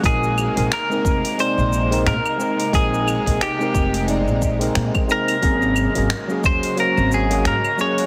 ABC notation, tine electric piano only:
X:1
M:4/4
L:1/16
Q:"Swing 16ths" 1/4=89
K:Bbm
V:1 name="Tine electric piano"
[A,CEB]3 [A,CEB] z [A,CEB]3 [A,CE=d]3 [A,CEB] z2 [A,CEB]2 | [A,CEB]3 [A,CEB] z [A,CEB]3 [A,CE=d]3 [A,CEB]3 [A,CEB] z | [G,B,DA]3 [G,B,DA] z [G,B,DA]3 [G,B,Dc]3 [G,B,DA] z2 [G,B,DA]2 |]